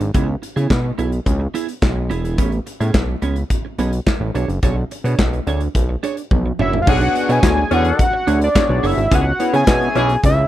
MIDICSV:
0, 0, Header, 1, 8, 480
1, 0, Start_track
1, 0, Tempo, 560748
1, 122, Time_signature, 4, 2, 24, 8
1, 8969, End_track
2, 0, Start_track
2, 0, Title_t, "Analog synth lead"
2, 0, Program_c, 0, 81
2, 5657, Note_on_c, 0, 76, 87
2, 5818, Note_off_c, 0, 76, 0
2, 5838, Note_on_c, 0, 77, 64
2, 5896, Note_on_c, 0, 78, 112
2, 5909, Note_off_c, 0, 77, 0
2, 6262, Note_on_c, 0, 80, 105
2, 6275, Note_off_c, 0, 78, 0
2, 6620, Note_on_c, 0, 78, 91
2, 6632, Note_off_c, 0, 80, 0
2, 6851, Note_off_c, 0, 78, 0
2, 6860, Note_on_c, 0, 78, 97
2, 7187, Note_off_c, 0, 78, 0
2, 7222, Note_on_c, 0, 74, 93
2, 7584, Note_on_c, 0, 76, 102
2, 7596, Note_off_c, 0, 74, 0
2, 7826, Note_on_c, 0, 78, 112
2, 7839, Note_off_c, 0, 76, 0
2, 8174, Note_off_c, 0, 78, 0
2, 8181, Note_on_c, 0, 80, 116
2, 8737, Note_off_c, 0, 80, 0
2, 8778, Note_on_c, 0, 76, 92
2, 8969, Note_off_c, 0, 76, 0
2, 8969, End_track
3, 0, Start_track
3, 0, Title_t, "Analog polysynth"
3, 0, Program_c, 1, 90
3, 5878, Note_on_c, 1, 68, 75
3, 5885, Note_on_c, 1, 73, 88
3, 5941, Note_off_c, 1, 68, 0
3, 5944, Note_off_c, 1, 73, 0
3, 5994, Note_on_c, 1, 59, 82
3, 5996, Note_on_c, 1, 62, 77
3, 5997, Note_on_c, 1, 66, 78
3, 6000, Note_on_c, 1, 68, 78
3, 6002, Note_on_c, 1, 73, 95
3, 6484, Note_off_c, 1, 59, 0
3, 6485, Note_off_c, 1, 62, 0
3, 6485, Note_off_c, 1, 66, 0
3, 6487, Note_off_c, 1, 68, 0
3, 6487, Note_off_c, 1, 73, 0
3, 7317, Note_on_c, 1, 59, 71
3, 7318, Note_on_c, 1, 62, 70
3, 7320, Note_on_c, 1, 66, 68
3, 7323, Note_on_c, 1, 68, 68
3, 7323, Note_on_c, 1, 73, 85
3, 7684, Note_off_c, 1, 59, 0
3, 7684, Note_off_c, 1, 62, 0
3, 7685, Note_off_c, 1, 66, 0
3, 7687, Note_off_c, 1, 68, 0
3, 7687, Note_off_c, 1, 73, 0
3, 8038, Note_on_c, 1, 59, 94
3, 8039, Note_on_c, 1, 61, 78
3, 8040, Note_on_c, 1, 64, 83
3, 8043, Note_on_c, 1, 68, 81
3, 8044, Note_on_c, 1, 73, 103
3, 8158, Note_off_c, 1, 59, 0
3, 8159, Note_off_c, 1, 61, 0
3, 8160, Note_off_c, 1, 64, 0
3, 8163, Note_off_c, 1, 68, 0
3, 8164, Note_off_c, 1, 73, 0
3, 8281, Note_on_c, 1, 59, 73
3, 8284, Note_on_c, 1, 61, 69
3, 8284, Note_on_c, 1, 64, 75
3, 8285, Note_on_c, 1, 68, 66
3, 8288, Note_on_c, 1, 73, 80
3, 8646, Note_off_c, 1, 59, 0
3, 8647, Note_off_c, 1, 61, 0
3, 8647, Note_off_c, 1, 64, 0
3, 8648, Note_off_c, 1, 68, 0
3, 8649, Note_off_c, 1, 73, 0
3, 8969, End_track
4, 0, Start_track
4, 0, Title_t, "Clean electric guitar"
4, 0, Program_c, 2, 27
4, 122, Note_on_c, 2, 59, 82
4, 128, Note_on_c, 2, 64, 98
4, 132, Note_on_c, 2, 68, 97
4, 232, Note_off_c, 2, 68, 0
4, 240, Note_off_c, 2, 64, 0
4, 275, Note_off_c, 2, 59, 0
4, 480, Note_on_c, 2, 68, 66
4, 486, Note_on_c, 2, 64, 63
4, 490, Note_on_c, 2, 59, 51
4, 601, Note_off_c, 2, 68, 0
4, 604, Note_off_c, 2, 64, 0
4, 606, Note_off_c, 2, 59, 0
4, 838, Note_on_c, 2, 59, 77
4, 845, Note_on_c, 2, 64, 85
4, 848, Note_on_c, 2, 68, 82
4, 948, Note_off_c, 2, 68, 0
4, 954, Note_off_c, 2, 64, 0
4, 994, Note_off_c, 2, 59, 0
4, 1318, Note_on_c, 2, 59, 68
4, 1324, Note_on_c, 2, 64, 86
4, 1328, Note_on_c, 2, 68, 82
4, 1430, Note_off_c, 2, 68, 0
4, 1438, Note_off_c, 2, 64, 0
4, 1474, Note_off_c, 2, 59, 0
4, 1796, Note_on_c, 2, 59, 88
4, 1803, Note_on_c, 2, 64, 82
4, 1806, Note_on_c, 2, 68, 83
4, 1908, Note_off_c, 2, 68, 0
4, 1914, Note_off_c, 2, 64, 0
4, 1918, Note_off_c, 2, 59, 0
4, 1918, Note_on_c, 2, 68, 54
4, 1924, Note_on_c, 2, 64, 50
4, 1928, Note_on_c, 2, 59, 42
4, 2026, Note_off_c, 2, 59, 0
4, 2037, Note_off_c, 2, 68, 0
4, 2037, Note_on_c, 2, 59, 85
4, 2038, Note_off_c, 2, 64, 0
4, 2041, Note_on_c, 2, 61, 95
4, 2048, Note_on_c, 2, 68, 102
4, 2149, Note_off_c, 2, 68, 0
4, 2156, Note_off_c, 2, 61, 0
4, 2193, Note_off_c, 2, 59, 0
4, 2401, Note_on_c, 2, 68, 65
4, 2407, Note_on_c, 2, 61, 55
4, 2411, Note_on_c, 2, 59, 47
4, 2521, Note_off_c, 2, 68, 0
4, 2524, Note_off_c, 2, 61, 0
4, 2526, Note_off_c, 2, 59, 0
4, 2758, Note_on_c, 2, 59, 75
4, 2767, Note_on_c, 2, 61, 88
4, 2770, Note_on_c, 2, 68, 90
4, 2873, Note_off_c, 2, 68, 0
4, 2882, Note_off_c, 2, 61, 0
4, 2913, Note_off_c, 2, 59, 0
4, 3244, Note_on_c, 2, 59, 82
4, 3249, Note_on_c, 2, 61, 74
4, 3253, Note_on_c, 2, 68, 91
4, 3354, Note_off_c, 2, 68, 0
4, 3360, Note_off_c, 2, 61, 0
4, 3396, Note_off_c, 2, 59, 0
4, 3724, Note_on_c, 2, 62, 76
4, 3730, Note_on_c, 2, 68, 80
4, 3734, Note_on_c, 2, 73, 83
4, 3834, Note_off_c, 2, 73, 0
4, 3842, Note_off_c, 2, 68, 0
4, 3876, Note_off_c, 2, 62, 0
4, 3961, Note_on_c, 2, 62, 79
4, 3968, Note_on_c, 2, 68, 82
4, 3973, Note_on_c, 2, 73, 96
4, 4074, Note_off_c, 2, 73, 0
4, 4082, Note_off_c, 2, 68, 0
4, 4115, Note_off_c, 2, 62, 0
4, 4327, Note_on_c, 2, 73, 60
4, 4332, Note_on_c, 2, 68, 53
4, 4338, Note_on_c, 2, 62, 44
4, 4445, Note_off_c, 2, 73, 0
4, 4447, Note_off_c, 2, 68, 0
4, 4450, Note_off_c, 2, 62, 0
4, 4685, Note_on_c, 2, 62, 74
4, 4691, Note_on_c, 2, 68, 82
4, 4695, Note_on_c, 2, 73, 84
4, 4798, Note_off_c, 2, 73, 0
4, 4805, Note_off_c, 2, 68, 0
4, 4837, Note_off_c, 2, 62, 0
4, 5161, Note_on_c, 2, 62, 74
4, 5166, Note_on_c, 2, 68, 88
4, 5172, Note_on_c, 2, 73, 91
4, 5275, Note_off_c, 2, 73, 0
4, 5281, Note_off_c, 2, 68, 0
4, 5315, Note_off_c, 2, 62, 0
4, 5644, Note_on_c, 2, 62, 71
4, 5650, Note_on_c, 2, 68, 74
4, 5655, Note_on_c, 2, 73, 83
4, 5760, Note_off_c, 2, 73, 0
4, 5765, Note_off_c, 2, 68, 0
4, 5796, Note_off_c, 2, 62, 0
4, 5886, Note_on_c, 2, 62, 101
4, 5892, Note_on_c, 2, 68, 114
4, 5895, Note_on_c, 2, 73, 100
4, 5995, Note_off_c, 2, 73, 0
4, 6003, Note_off_c, 2, 68, 0
4, 6037, Note_off_c, 2, 62, 0
4, 6246, Note_on_c, 2, 73, 72
4, 6253, Note_on_c, 2, 68, 61
4, 6257, Note_on_c, 2, 62, 51
4, 6364, Note_off_c, 2, 73, 0
4, 6367, Note_off_c, 2, 68, 0
4, 6369, Note_off_c, 2, 62, 0
4, 6605, Note_on_c, 2, 62, 85
4, 6610, Note_on_c, 2, 68, 81
4, 6615, Note_on_c, 2, 73, 89
4, 6712, Note_off_c, 2, 73, 0
4, 6720, Note_off_c, 2, 68, 0
4, 6757, Note_off_c, 2, 62, 0
4, 7079, Note_on_c, 2, 62, 82
4, 7085, Note_on_c, 2, 68, 89
4, 7090, Note_on_c, 2, 73, 83
4, 7191, Note_off_c, 2, 73, 0
4, 7197, Note_off_c, 2, 68, 0
4, 7234, Note_off_c, 2, 62, 0
4, 7559, Note_on_c, 2, 62, 72
4, 7564, Note_on_c, 2, 68, 95
4, 7570, Note_on_c, 2, 73, 89
4, 7672, Note_off_c, 2, 73, 0
4, 7681, Note_off_c, 2, 68, 0
4, 7714, Note_off_c, 2, 62, 0
4, 7801, Note_on_c, 2, 59, 90
4, 7806, Note_on_c, 2, 64, 95
4, 7812, Note_on_c, 2, 68, 114
4, 7912, Note_off_c, 2, 68, 0
4, 7919, Note_off_c, 2, 64, 0
4, 7955, Note_off_c, 2, 59, 0
4, 8161, Note_on_c, 2, 68, 71
4, 8167, Note_on_c, 2, 64, 55
4, 8171, Note_on_c, 2, 59, 59
4, 8282, Note_off_c, 2, 68, 0
4, 8284, Note_off_c, 2, 64, 0
4, 8287, Note_off_c, 2, 59, 0
4, 8522, Note_on_c, 2, 59, 88
4, 8528, Note_on_c, 2, 64, 91
4, 8532, Note_on_c, 2, 68, 89
4, 8633, Note_off_c, 2, 68, 0
4, 8641, Note_off_c, 2, 64, 0
4, 8676, Note_off_c, 2, 59, 0
4, 8969, End_track
5, 0, Start_track
5, 0, Title_t, "Horn section"
5, 0, Program_c, 3, 61
5, 5882, Note_on_c, 3, 68, 102
5, 5883, Note_on_c, 3, 50, 91
5, 5884, Note_on_c, 3, 61, 101
5, 5984, Note_off_c, 3, 68, 0
5, 5985, Note_off_c, 3, 50, 0
5, 5985, Note_off_c, 3, 61, 0
5, 6597, Note_on_c, 3, 50, 109
5, 6597, Note_on_c, 3, 61, 112
5, 6597, Note_on_c, 3, 68, 116
5, 6905, Note_off_c, 3, 50, 0
5, 6905, Note_off_c, 3, 61, 0
5, 6905, Note_off_c, 3, 68, 0
5, 7800, Note_on_c, 3, 68, 97
5, 7801, Note_on_c, 3, 52, 93
5, 7801, Note_on_c, 3, 61, 97
5, 7903, Note_off_c, 3, 52, 0
5, 7903, Note_off_c, 3, 68, 0
5, 7904, Note_off_c, 3, 61, 0
5, 8520, Note_on_c, 3, 61, 110
5, 8520, Note_on_c, 3, 68, 116
5, 8521, Note_on_c, 3, 52, 115
5, 8674, Note_off_c, 3, 61, 0
5, 8674, Note_off_c, 3, 68, 0
5, 8675, Note_off_c, 3, 52, 0
5, 8969, End_track
6, 0, Start_track
6, 0, Title_t, "Analog synth bass"
6, 0, Program_c, 4, 38
6, 5, Note_on_c, 4, 32, 92
6, 96, Note_off_c, 4, 32, 0
6, 124, Note_on_c, 4, 37, 97
6, 307, Note_off_c, 4, 37, 0
6, 483, Note_on_c, 4, 49, 82
6, 575, Note_off_c, 4, 49, 0
6, 602, Note_on_c, 4, 47, 90
6, 786, Note_off_c, 4, 47, 0
6, 844, Note_on_c, 4, 35, 68
6, 1027, Note_off_c, 4, 35, 0
6, 1080, Note_on_c, 4, 37, 101
6, 1264, Note_off_c, 4, 37, 0
6, 1560, Note_on_c, 4, 35, 92
6, 1801, Note_on_c, 4, 28, 94
6, 1814, Note_off_c, 4, 35, 0
6, 2041, Note_on_c, 4, 33, 105
6, 2053, Note_off_c, 4, 28, 0
6, 2225, Note_off_c, 4, 33, 0
6, 2400, Note_on_c, 4, 45, 91
6, 2493, Note_off_c, 4, 45, 0
6, 2517, Note_on_c, 4, 35, 85
6, 2703, Note_off_c, 4, 35, 0
6, 2758, Note_on_c, 4, 37, 78
6, 2944, Note_off_c, 4, 37, 0
6, 3240, Note_on_c, 4, 35, 84
6, 3425, Note_off_c, 4, 35, 0
6, 3596, Note_on_c, 4, 33, 92
6, 3691, Note_off_c, 4, 33, 0
6, 3719, Note_on_c, 4, 35, 97
6, 3812, Note_off_c, 4, 35, 0
6, 3838, Note_on_c, 4, 30, 83
6, 3932, Note_off_c, 4, 30, 0
6, 3962, Note_on_c, 4, 35, 100
6, 4146, Note_off_c, 4, 35, 0
6, 4316, Note_on_c, 4, 47, 105
6, 4411, Note_off_c, 4, 47, 0
6, 4439, Note_on_c, 4, 35, 90
6, 4624, Note_off_c, 4, 35, 0
6, 4680, Note_on_c, 4, 38, 86
6, 4865, Note_off_c, 4, 38, 0
6, 4920, Note_on_c, 4, 35, 94
6, 5105, Note_off_c, 4, 35, 0
6, 5402, Note_on_c, 4, 35, 96
6, 5586, Note_off_c, 4, 35, 0
6, 5642, Note_on_c, 4, 30, 85
6, 5826, Note_off_c, 4, 30, 0
6, 5882, Note_on_c, 4, 35, 113
6, 6066, Note_off_c, 4, 35, 0
6, 6240, Note_on_c, 4, 47, 103
6, 6333, Note_off_c, 4, 47, 0
6, 6359, Note_on_c, 4, 38, 98
6, 6544, Note_off_c, 4, 38, 0
6, 6601, Note_on_c, 4, 40, 85
6, 6785, Note_off_c, 4, 40, 0
6, 7081, Note_on_c, 4, 38, 98
6, 7266, Note_off_c, 4, 38, 0
6, 7442, Note_on_c, 4, 35, 104
6, 7534, Note_off_c, 4, 35, 0
6, 7564, Note_on_c, 4, 30, 91
6, 7655, Note_off_c, 4, 30, 0
6, 7680, Note_on_c, 4, 32, 90
6, 7773, Note_off_c, 4, 32, 0
6, 7802, Note_on_c, 4, 37, 108
6, 7986, Note_off_c, 4, 37, 0
6, 8162, Note_on_c, 4, 49, 100
6, 8254, Note_off_c, 4, 49, 0
6, 8278, Note_on_c, 4, 47, 98
6, 8464, Note_off_c, 4, 47, 0
6, 8521, Note_on_c, 4, 35, 76
6, 8706, Note_off_c, 4, 35, 0
6, 8762, Note_on_c, 4, 37, 104
6, 8946, Note_off_c, 4, 37, 0
6, 8969, End_track
7, 0, Start_track
7, 0, Title_t, "Muted clean electric guitar strokes"
7, 5, Note_on_c, 9, 29, 45
7, 91, Note_off_c, 9, 29, 0
7, 242, Note_on_c, 9, 29, 54
7, 328, Note_off_c, 9, 29, 0
7, 361, Note_on_c, 9, 29, 47
7, 446, Note_off_c, 9, 29, 0
7, 722, Note_on_c, 9, 29, 52
7, 808, Note_off_c, 9, 29, 0
7, 958, Note_on_c, 9, 29, 45
7, 1044, Note_off_c, 9, 29, 0
7, 1197, Note_on_c, 9, 29, 52
7, 1283, Note_off_c, 9, 29, 0
7, 1440, Note_on_c, 9, 29, 46
7, 1526, Note_off_c, 9, 29, 0
7, 1676, Note_on_c, 9, 29, 45
7, 1762, Note_off_c, 9, 29, 0
7, 2159, Note_on_c, 9, 29, 39
7, 2244, Note_off_c, 9, 29, 0
7, 2281, Note_on_c, 9, 29, 46
7, 2366, Note_off_c, 9, 29, 0
7, 2640, Note_on_c, 9, 29, 41
7, 2726, Note_off_c, 9, 29, 0
7, 2883, Note_on_c, 9, 29, 54
7, 2969, Note_off_c, 9, 29, 0
7, 3122, Note_on_c, 9, 29, 36
7, 3208, Note_off_c, 9, 29, 0
7, 3364, Note_on_c, 9, 29, 42
7, 3449, Note_off_c, 9, 29, 0
7, 3606, Note_on_c, 9, 29, 44
7, 3692, Note_off_c, 9, 29, 0
7, 3844, Note_on_c, 9, 29, 36
7, 3930, Note_off_c, 9, 29, 0
7, 4084, Note_on_c, 9, 29, 42
7, 4170, Note_off_c, 9, 29, 0
7, 4205, Note_on_c, 9, 29, 37
7, 4291, Note_off_c, 9, 29, 0
7, 4564, Note_on_c, 9, 29, 50
7, 4649, Note_off_c, 9, 29, 0
7, 4808, Note_on_c, 9, 29, 46
7, 4894, Note_off_c, 9, 29, 0
7, 5044, Note_on_c, 9, 29, 39
7, 5129, Note_off_c, 9, 29, 0
7, 5285, Note_on_c, 9, 29, 47
7, 5370, Note_off_c, 9, 29, 0
7, 5404, Note_on_c, 9, 29, 30
7, 5490, Note_off_c, 9, 29, 0
7, 5527, Note_on_c, 9, 29, 47
7, 5613, Note_off_c, 9, 29, 0
7, 5770, Note_on_c, 9, 29, 35
7, 5856, Note_off_c, 9, 29, 0
7, 6005, Note_on_c, 9, 29, 50
7, 6091, Note_off_c, 9, 29, 0
7, 6124, Note_on_c, 9, 29, 46
7, 6210, Note_off_c, 9, 29, 0
7, 6487, Note_on_c, 9, 29, 57
7, 6572, Note_off_c, 9, 29, 0
7, 6722, Note_on_c, 9, 29, 54
7, 6808, Note_off_c, 9, 29, 0
7, 6963, Note_on_c, 9, 29, 59
7, 7048, Note_off_c, 9, 29, 0
7, 7201, Note_on_c, 9, 29, 53
7, 7287, Note_off_c, 9, 29, 0
7, 7442, Note_on_c, 9, 29, 47
7, 7528, Note_off_c, 9, 29, 0
7, 7682, Note_on_c, 9, 29, 44
7, 7768, Note_off_c, 9, 29, 0
7, 7922, Note_on_c, 9, 29, 54
7, 8008, Note_off_c, 9, 29, 0
7, 8044, Note_on_c, 9, 29, 48
7, 8130, Note_off_c, 9, 29, 0
7, 8404, Note_on_c, 9, 29, 50
7, 8490, Note_off_c, 9, 29, 0
7, 8644, Note_on_c, 9, 29, 51
7, 8729, Note_off_c, 9, 29, 0
7, 8883, Note_on_c, 9, 29, 46
7, 8968, Note_off_c, 9, 29, 0
7, 8969, End_track
8, 0, Start_track
8, 0, Title_t, "Drums"
8, 5, Note_on_c, 9, 42, 49
8, 91, Note_off_c, 9, 42, 0
8, 123, Note_on_c, 9, 42, 89
8, 124, Note_on_c, 9, 36, 107
8, 209, Note_off_c, 9, 42, 0
8, 210, Note_off_c, 9, 36, 0
8, 368, Note_on_c, 9, 42, 74
8, 454, Note_off_c, 9, 42, 0
8, 488, Note_on_c, 9, 42, 46
8, 573, Note_off_c, 9, 42, 0
8, 601, Note_on_c, 9, 36, 115
8, 607, Note_on_c, 9, 38, 109
8, 613, Note_on_c, 9, 39, 85
8, 687, Note_off_c, 9, 36, 0
8, 693, Note_off_c, 9, 38, 0
8, 699, Note_off_c, 9, 39, 0
8, 844, Note_on_c, 9, 42, 69
8, 930, Note_off_c, 9, 42, 0
8, 961, Note_on_c, 9, 42, 44
8, 1047, Note_off_c, 9, 42, 0
8, 1081, Note_on_c, 9, 36, 93
8, 1083, Note_on_c, 9, 42, 80
8, 1167, Note_off_c, 9, 36, 0
8, 1169, Note_off_c, 9, 42, 0
8, 1325, Note_on_c, 9, 42, 81
8, 1411, Note_off_c, 9, 42, 0
8, 1442, Note_on_c, 9, 42, 53
8, 1528, Note_off_c, 9, 42, 0
8, 1560, Note_on_c, 9, 36, 106
8, 1563, Note_on_c, 9, 38, 101
8, 1568, Note_on_c, 9, 39, 87
8, 1646, Note_off_c, 9, 36, 0
8, 1648, Note_off_c, 9, 38, 0
8, 1654, Note_off_c, 9, 39, 0
8, 1804, Note_on_c, 9, 42, 61
8, 1889, Note_off_c, 9, 42, 0
8, 1925, Note_on_c, 9, 42, 50
8, 2010, Note_off_c, 9, 42, 0
8, 2040, Note_on_c, 9, 36, 107
8, 2040, Note_on_c, 9, 42, 90
8, 2126, Note_off_c, 9, 36, 0
8, 2126, Note_off_c, 9, 42, 0
8, 2158, Note_on_c, 9, 42, 34
8, 2244, Note_off_c, 9, 42, 0
8, 2283, Note_on_c, 9, 42, 83
8, 2369, Note_off_c, 9, 42, 0
8, 2404, Note_on_c, 9, 42, 43
8, 2490, Note_off_c, 9, 42, 0
8, 2518, Note_on_c, 9, 36, 102
8, 2521, Note_on_c, 9, 38, 114
8, 2527, Note_on_c, 9, 39, 89
8, 2603, Note_off_c, 9, 36, 0
8, 2607, Note_off_c, 9, 38, 0
8, 2612, Note_off_c, 9, 39, 0
8, 2758, Note_on_c, 9, 42, 68
8, 2843, Note_off_c, 9, 42, 0
8, 2875, Note_on_c, 9, 42, 50
8, 2961, Note_off_c, 9, 42, 0
8, 2998, Note_on_c, 9, 36, 99
8, 2998, Note_on_c, 9, 42, 94
8, 3084, Note_off_c, 9, 36, 0
8, 3084, Note_off_c, 9, 42, 0
8, 3241, Note_on_c, 9, 42, 79
8, 3326, Note_off_c, 9, 42, 0
8, 3360, Note_on_c, 9, 42, 53
8, 3446, Note_off_c, 9, 42, 0
8, 3481, Note_on_c, 9, 36, 106
8, 3483, Note_on_c, 9, 38, 102
8, 3489, Note_on_c, 9, 39, 86
8, 3566, Note_off_c, 9, 36, 0
8, 3569, Note_off_c, 9, 38, 0
8, 3574, Note_off_c, 9, 39, 0
8, 3725, Note_on_c, 9, 42, 65
8, 3811, Note_off_c, 9, 42, 0
8, 3847, Note_on_c, 9, 42, 51
8, 3933, Note_off_c, 9, 42, 0
8, 3960, Note_on_c, 9, 42, 90
8, 3962, Note_on_c, 9, 36, 110
8, 4046, Note_off_c, 9, 42, 0
8, 4047, Note_off_c, 9, 36, 0
8, 4205, Note_on_c, 9, 42, 76
8, 4291, Note_off_c, 9, 42, 0
8, 4324, Note_on_c, 9, 42, 48
8, 4410, Note_off_c, 9, 42, 0
8, 4440, Note_on_c, 9, 36, 104
8, 4444, Note_on_c, 9, 38, 101
8, 4450, Note_on_c, 9, 39, 91
8, 4525, Note_off_c, 9, 36, 0
8, 4530, Note_off_c, 9, 38, 0
8, 4535, Note_off_c, 9, 39, 0
8, 4566, Note_on_c, 9, 42, 33
8, 4651, Note_off_c, 9, 42, 0
8, 4683, Note_on_c, 9, 42, 63
8, 4768, Note_off_c, 9, 42, 0
8, 4798, Note_on_c, 9, 42, 46
8, 4884, Note_off_c, 9, 42, 0
8, 4922, Note_on_c, 9, 36, 99
8, 4924, Note_on_c, 9, 42, 84
8, 5007, Note_off_c, 9, 36, 0
8, 5010, Note_off_c, 9, 42, 0
8, 5167, Note_on_c, 9, 42, 80
8, 5252, Note_off_c, 9, 42, 0
8, 5283, Note_on_c, 9, 42, 48
8, 5369, Note_off_c, 9, 42, 0
8, 5402, Note_on_c, 9, 36, 105
8, 5403, Note_on_c, 9, 48, 50
8, 5488, Note_off_c, 9, 36, 0
8, 5489, Note_off_c, 9, 48, 0
8, 5644, Note_on_c, 9, 45, 79
8, 5730, Note_off_c, 9, 45, 0
8, 5765, Note_on_c, 9, 43, 78
8, 5850, Note_off_c, 9, 43, 0
8, 5882, Note_on_c, 9, 49, 107
8, 5883, Note_on_c, 9, 36, 122
8, 5968, Note_off_c, 9, 49, 0
8, 5969, Note_off_c, 9, 36, 0
8, 6001, Note_on_c, 9, 42, 37
8, 6087, Note_off_c, 9, 42, 0
8, 6124, Note_on_c, 9, 42, 80
8, 6210, Note_off_c, 9, 42, 0
8, 6243, Note_on_c, 9, 42, 53
8, 6329, Note_off_c, 9, 42, 0
8, 6359, Note_on_c, 9, 42, 107
8, 6360, Note_on_c, 9, 36, 123
8, 6365, Note_on_c, 9, 38, 127
8, 6370, Note_on_c, 9, 39, 103
8, 6445, Note_off_c, 9, 42, 0
8, 6446, Note_off_c, 9, 36, 0
8, 6450, Note_off_c, 9, 38, 0
8, 6456, Note_off_c, 9, 39, 0
8, 6601, Note_on_c, 9, 42, 72
8, 6686, Note_off_c, 9, 42, 0
8, 6717, Note_on_c, 9, 42, 57
8, 6802, Note_off_c, 9, 42, 0
8, 6842, Note_on_c, 9, 36, 113
8, 6843, Note_on_c, 9, 42, 93
8, 6927, Note_off_c, 9, 36, 0
8, 6929, Note_off_c, 9, 42, 0
8, 7084, Note_on_c, 9, 42, 90
8, 7170, Note_off_c, 9, 42, 0
8, 7203, Note_on_c, 9, 42, 60
8, 7289, Note_off_c, 9, 42, 0
8, 7322, Note_on_c, 9, 42, 94
8, 7323, Note_on_c, 9, 36, 110
8, 7328, Note_on_c, 9, 38, 106
8, 7333, Note_on_c, 9, 39, 79
8, 7408, Note_off_c, 9, 42, 0
8, 7409, Note_off_c, 9, 36, 0
8, 7413, Note_off_c, 9, 38, 0
8, 7419, Note_off_c, 9, 39, 0
8, 7567, Note_on_c, 9, 46, 78
8, 7652, Note_off_c, 9, 46, 0
8, 7687, Note_on_c, 9, 42, 53
8, 7772, Note_off_c, 9, 42, 0
8, 7802, Note_on_c, 9, 42, 109
8, 7803, Note_on_c, 9, 36, 117
8, 7888, Note_off_c, 9, 36, 0
8, 7888, Note_off_c, 9, 42, 0
8, 8045, Note_on_c, 9, 42, 90
8, 8130, Note_off_c, 9, 42, 0
8, 8164, Note_on_c, 9, 42, 50
8, 8250, Note_off_c, 9, 42, 0
8, 8277, Note_on_c, 9, 42, 97
8, 8279, Note_on_c, 9, 36, 113
8, 8283, Note_on_c, 9, 38, 117
8, 8288, Note_on_c, 9, 39, 97
8, 8363, Note_off_c, 9, 42, 0
8, 8365, Note_off_c, 9, 36, 0
8, 8368, Note_off_c, 9, 38, 0
8, 8374, Note_off_c, 9, 39, 0
8, 8405, Note_on_c, 9, 42, 35
8, 8490, Note_off_c, 9, 42, 0
8, 8521, Note_on_c, 9, 42, 72
8, 8606, Note_off_c, 9, 42, 0
8, 8639, Note_on_c, 9, 42, 52
8, 8725, Note_off_c, 9, 42, 0
8, 8761, Note_on_c, 9, 36, 108
8, 8764, Note_on_c, 9, 42, 97
8, 8847, Note_off_c, 9, 36, 0
8, 8850, Note_off_c, 9, 42, 0
8, 8969, End_track
0, 0, End_of_file